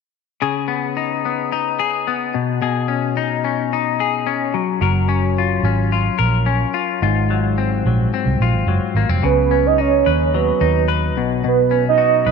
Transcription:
0.42 2.40 C#3 medium
0.42 1.79 G#4 medium
0.68 1.25 B3 medium
0.97 1.52 D#4 medium
1.25 2.07 B3 soft
1.52 2.91 D#4 soft
1.79 2.62 G#4 medium
2.07 2.88 B3 soft
2.34 2.60 B2 medium
2.61 4.60 B2 medium
2.61 4.00 G#4 medium
2.88 3.44 C#4 medium
3.17 3.72 D#4 medium
3.44 4.26 C#4 soft
3.73 4.61 D#4 medium
4.00 4.82 G#4 medium
4.27 5.08 C#4 medium
4.54 4.81 F#3 medium
4.81 5.60 F#1 medium
4.81 7.05 F#3 medium
4.81 6.18 A#4 soft
5.09 5.63 C#4 medium
5.38 5.92 F4 medium
5.63 6.08 G#1 medium
5.63 6.45 C#4 soft
5.92 6.74 F4 soft
6.19 6.64 A#1 medium
6.19 7.61 A#4 medium
6.46 7.07 C#4 medium
6.74 7.02 F4 medium
7.02 7.81 G#1 loud
7.02 9.23 G#2 medium
7.02 8.40 F4 medium
7.30 7.86 F#3 medium
7.58 8.13 C4 medium
7.85 8.07 A#1 medium
7.85 8.68 F#3 soft
8.14 8.96 C4 medium
8.26 8.37 C2 medium
8.40 8.51 A#1 medium
8.40 9.29 F4 medium
8.53 8.65 G#1 medium
8.66 8.78 F#1 medium
8.66 10.34 F#3 soft
8.95 9.06 G#1 medium
8.95 9.09 A#3 medium
9.09 9.20 F1 medium
9.09 9.28 C4 soft
9.23 10.02 C#2 loud
9.23 11.21 C#3 medium
9.23 9.68 B4 loud
9.51 11.47 C#4 soft
9.66 9.82 D#5 loud
9.78 10.61 D#4 medium
9.78 10.36 C#5 medium
10.06 10.50 D#2 medium
10.06 10.88 B4 medium
10.34 12.31 F#3 medium
10.34 11.16 B4 medium
10.61 11.16 D#2 medium
10.61 11.74 D#4 medium
10.88 11.74 B4 medium
11.16 12.04 B1 medium
11.16 11.43 B2 medium
11.44 12.31 B2 medium
11.44 11.84 B4 loud
11.71 12.31 C#4 medium
11.89 12.31 D#5 loud
11.98 12.31 F#4 medium
12.26 12.31 B1 medium
12.26 12.31 B4 medium

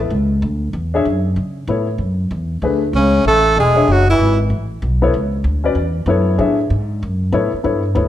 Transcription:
0.00 0.11 B3 medium
0.00 0.11 E4 medium
0.00 0.11 A4 medium
0.00 0.12 B4 medium
0.10 0.41 C#2 medium
0.42 0.73 D2 medium
0.73 1.04 E2 medium
0.94 1.04 D4 medium
0.94 1.05 G#4 medium
0.94 1.05 C#5 medium
0.94 1.05 E5 medium
1.05 1.35 F#2 medium
1.36 1.67 C#3 medium
1.68 1.98 A2 medium
1.68 1.86 B3 medium
1.68 1.86 E4 medium
1.68 1.87 A4 medium
1.68 1.87 C#5 medium
1.98 2.30 F#2 medium
2.31 2.61 E2 medium
2.62 2.93 D2 medium
2.62 2.80 A3 medium
2.62 2.81 D4 medium
2.62 2.81 G#4 medium
2.62 2.81 B4 medium
2.93 3.24 C#2 medium
2.93 3.24 C#3 medium
2.93 3.24 C#4 medium
3.25 3.55 A1 medium
3.25 3.55 A3 medium
3.25 3.56 A4 loud
3.56 3.87 E1 medium
3.56 3.90 G#3 medium
3.56 3.93 G#4 medium
3.75 3.87 D4 medium
3.75 3.87 G#4 medium
3.75 3.87 C#5 medium
3.75 3.87 E5 medium
3.88 4.18 F#1 medium
3.88 4.08 F#3 medium
3.92 4.10 F#4 medium
4.09 4.38 E3 medium
4.09 4.38 E4 medium
4.19 4.49 G#1 medium
4.50 4.81 A1 medium
4.82 5.13 B1 medium
5.02 5.13 B3 medium
5.02 5.13 E4 medium
5.02 5.13 A4 medium
5.02 5.13 C#5 medium
5.14 5.43 C#2 medium
5.44 5.74 D2 medium
5.64 5.75 C#4 medium
5.64 5.75 F#4 medium
5.64 5.75 B4 medium
5.64 5.76 D5 medium
5.75 6.05 E2 medium
6.06 6.37 F#2 medium
6.06 6.55 B3 medium
6.06 6.55 E4 medium
6.06 6.55 A4 medium
6.06 6.38 C#5 medium
6.38 6.69 A2 medium
6.38 6.56 D4 medium
6.38 6.57 G#4 medium
6.38 6.57 C#5 medium
6.38 6.57 E5 medium
6.70 7.01 G#2 medium
7.03 7.32 F#2 medium
7.32 7.51 A2 medium
7.32 7.51 B3 medium
7.32 7.51 E4 medium
7.32 7.51 A4 medium
7.32 7.52 C#5 medium
7.54 muted upright bass stroke soft
7.64 7.95 G2 medium
7.64 7.82 B3 medium
7.64 7.82 E4 medium
7.64 7.82 A4 medium
7.64 7.83 C#5 medium
7.95 8.06 D2 medium
7.95 8.08 B3 medium
7.95 8.08 E4 medium
7.95 8.08 A4 medium
7.95 8.08 C#5 medium

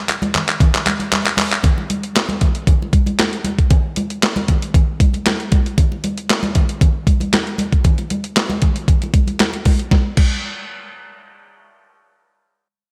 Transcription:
0.08 clap medium
0.08 closed hi-hat medium
0.08 muted conga soft
0.22 closed hi-hat soft
0.22 high conga medium
0.34 clap medium
0.34 closed hi-hat medium
0.34 low conga medium
0.48 clap medium
0.48 closed hi-hat medium
0.60 kick loud
0.60 closed hi-hat medium
0.60 low conga medium
0.74 clap loud
0.74 closed hi-hat soft
0.74 muted conga soft
0.86 clap loud
0.86 closed hi-hat medium
0.86 high conga medium
1.00 closed hi-hat soft
1.00 high conga medium
1.12 clap loud
1.12 closed hi-hat loud
1.12 high conga medium
1.25 clap loud
1.25 closed hi-hat soft
1.25 muted conga soft
1.37 clap loud
1.37 open hi-hat medium
1.37 high conga medium
1.52 clap loud
1.52 closed hi-hat soft
1.63 kick loud
1.63 closed hi-hat medium
1.63 muted conga soft
1.63 low conga medium
1.78 muted conga soft
1.90 closed hi-hat medium
1.90 high conga medium
2.03 closed hi-hat soft
2.15 snare loud
2.15 clap loud
2.15 closed hi-hat loud
2.15 muted conga soft
2.29 closed hi-hat soft
2.29 high conga medium
2.41 kick medium
2.41 closed hi-hat medium
2.41 low conga medium
2.55 closed hi-hat medium
2.67 kick loud
2.67 closed hi-hat medium
2.67 muted conga soft
2.67 low conga medium
2.82 muted conga soft
2.93 kick loud
2.93 closed hi-hat medium
2.93 high conga medium
3.06 closed hi-hat soft
3.06 high conga medium
3.19 snare loud
3.19 clap medium
3.19 closed hi-hat loud
3.19 muted conga soft
3.19 high conga medium
3.33 closed hi-hat soft
3.44 closed hi-hat medium
3.44 high conga medium
3.59 kick medium
3.59 closed hi-hat soft
3.70 kick loud
3.70 closed hi-hat medium
3.70 muted conga soft
3.70 low conga medium
3.96 closed hi-hat medium
3.96 high conga medium
4.10 closed hi-hat soft
4.23 snare loud
4.23 clap loud
4.23 closed hi-hat loud
4.36 closed hi-hat soft
4.36 muted conga soft
4.36 high conga medium
4.48 kick medium
4.48 closed hi-hat medium
4.48 low conga medium
4.62 closed hi-hat medium
4.74 kick loud
4.74 closed hi-hat medium
4.74 muted conga soft
4.74 low conga medium
5.00 kick loud
5.00 closed hi-hat medium
5.00 high conga medium
5.13 closed hi-hat soft
5.13 high conga medium
5.26 snare loud
5.26 clap medium
5.26 closed hi-hat loud
5.26 muted conga soft
5.26 high conga medium
5.40 closed hi-hat soft
5.52 kick loud
5.52 closed hi-hat medium
5.52 high conga medium
5.66 closed hi-hat soft
5.78 kick loud
5.78 closed hi-hat medium
5.78 muted conga soft
5.78 low conga medium
5.92 muted conga soft
6.04 closed hi-hat medium
6.04 high conga medium
6.18 closed hi-hat medium
6.30 snare loud
6.30 clap loud
6.30 closed hi-hat loud
6.43 closed hi-hat soft
6.43 muted conga soft
6.43 high conga medium
6.55 kick medium
6.55 closed hi-hat medium
6.55 low conga medium
6.69 closed hi-hat medium
6.81 kick loud
6.81 closed hi-hat medium
6.81 low conga medium
7.07 kick medium
7.07 closed hi-hat medium
7.07 high conga medium
7.20 closed hi-hat soft
7.20 high conga medium
7.33 snare loud
7.33 clap medium
7.33 closed hi-hat loud
7.33 muted conga soft
7.33 high conga medium
7.47 closed hi-hat soft
7.58 closed hi-hat medium
7.58 high conga medium
7.73 kick medium
7.73 closed hi-hat soft
7.84 kick loud
7.84 closed hi-hat medium
7.84 muted conga soft
7.84 low conga medium
7.98 closed hi-hat soft
7.98 muted conga soft
8.10 closed hi-hat medium
8.10 high conga medium
8.24 closed hi-hat soft
8.36 snare loud
8.36 clap medium
8.36 closed hi-hat loud
8.36 muted conga soft
8.50 closed hi-hat soft
8.50 muted conga soft
8.50 high conga medium
8.62 kick medium
8.62 closed hi-hat medium
8.62 low conga medium
8.76 closed hi-hat medium
8.88 kick loud
8.88 closed hi-hat medium
8.88 low conga medium
9.02 closed hi-hat soft
9.02 muted conga soft
9.14 kick loud
9.14 closed hi-hat medium
9.14 high conga medium
9.27 closed hi-hat soft
9.27 high conga medium
9.39 snare loud
9.39 clap medium
9.39 closed hi-hat loud
9.39 high conga medium
9.53 closed hi-hat soft
9.53 muted conga soft
9.65 kick loud
9.65 open hi-hat medium
9.65 high conga medium
9.79 closed hi-hat soft
9.91 kick loud
9.91 snare medium
9.91 high conga medium
10.17 kick loud
10.17 crash medium
10.17 high conga medium

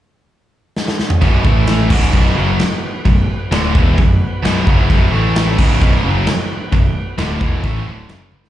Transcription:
0.77 snare medium
0.88 snare medium
0.99 snare medium
1.10 mid tom loud
1.21 1.43 B0 medium
1.21 1.43 B1 medium
1.21 1.44 F#2 loud
1.21 1.44 B2 loud
1.21 1.44 B3 medium
1.21 1.45 F#4 medium
1.21 1.44 B4 medium
1.21 kick loud
1.21 crash medium
1.44 1.88 A1 loud
1.44 1.90 A2 loud
1.44 1.90 E3 loud
1.44 1.90 A3 loud
1.44 1.91 A3 medium
1.44 1.91 E4 medium
1.44 1.89 B4 medium
1.44 kick loud
1.67 snare loud
1.67 crash medium
1.90 2.12 C#1 loud
1.90 2.13 C#2 medium
1.90 2.13 G#2 loud
1.90 2.13 C#3 loud
1.90 5.09 B3 medium
1.90 5.09 F#4 medium
1.90 8.49 B4 medium
1.90 kick loud
1.90 crash loud
2.13 2.35 B0 medium
2.13 2.36 B1 medium
2.13 2.35 F#2 medium
2.13 2.36 B2 loud
2.13 kick loud
2.13 crash medium
2.36 2.58 F#1 loud
2.36 2.59 F#2 medium
2.36 2.59 C#3 medium
2.36 2.59 F#3 loud
2.59 snare loud
2.59 crash medium
3.05 3.27 B0 medium
3.05 3.24 B1 medium
3.05 3.24 F#2 medium
3.05 kick loud
3.05 crash medium
3.51 3.73 D1 medium
3.51 3.74 D2 loud
3.51 3.74 A2 loud
3.51 3.74 D3 loud
3.51 snare loud
3.51 crash medium
3.74 3.96 E1 medium
3.74 3.97 E2 loud
3.74 3.97 B2 loud
3.74 3.97 E3 loud
3.74 kick loud
3.98 4.19 B0 medium
3.98 4.16 B1 medium
3.98 4.17 F#2 medium
3.98 kick loud
3.98 crash medium
4.43 4.65 B0 medium
4.43 4.66 B1 medium
4.43 4.66 F#2 medium
4.43 4.67 B2 loud
4.43 snare loud
4.43 crash medium
4.67 4.88 F#1 loud
4.67 4.89 F#2 loud
4.67 4.90 C#3 loud
4.67 4.90 F#3 loud
4.67 kick loud
4.90 5.11 B0 loud
4.90 5.11 B1 loud
4.90 5.12 F#2 loud
4.90 5.12 B2 loud
4.90 kick loud
4.90 crash medium
5.11 5.55 A1 loud
5.11 5.57 A2 loud
5.11 5.58 E3 loud
5.11 5.58 A3 loud
5.11 5.58 A3 medium
5.11 5.59 E4 medium
5.36 snare loud
5.36 crash medium
5.58 5.80 C#1 loud
5.58 5.80 C#2 loud
5.58 5.80 G#2 loud
5.58 5.81 C#3 loud
5.58 8.49 B3 medium
5.58 8.49 F#4 medium
5.58 kick loud
5.58 crash loud
5.80 6.03 B0 medium
5.80 6.03 B1 medium
5.80 6.02 F#2 loud
5.80 6.03 B2 medium
5.80 kick loud
5.80 crash medium
6.04 6.25 F#1 medium
6.04 6.26 F#2 loud
6.04 6.26 C#3 loud
6.04 6.26 F#3 loud
6.27 snare loud
6.27 crash medium
6.72 6.94 B0 medium
6.72 6.91 B1 medium
6.72 6.91 F#2 medium
6.72 kick loud
6.72 crash medium
7.18 7.39 D1 medium
7.18 7.40 D2 loud
7.18 7.40 A2 loud
7.18 7.41 D3 loud
7.18 snare loud
7.18 crash medium
7.41 7.62 E1 medium
7.41 7.63 E2 loud
7.41 7.63 B2 loud
7.41 7.62 E3 loud
7.41 kick loud
7.63 7.85 A1 medium
7.63 7.86 A2 medium
7.63 7.86 E3 loud
7.63 7.86 A3 medium
7.63 kick loud
7.63 crash medium
7.86 8.08 D1 loud
7.86 8.09 D2 medium
7.86 8.09 A2 loud
7.86 8.09 D3 loud
8.09 8.30 F#1 medium
8.09 8.31 F#2 medium
8.09 8.32 C#3 medium
8.09 8.32 F#3 medium
8.09 snare loud
8.09 crash medium
8.32 8.49 G1 medium
8.32 8.49 G2 medium
8.32 8.49 D3 medium
8.32 8.49 G3 loud
8.32 high tom medium
8.44 snare medium

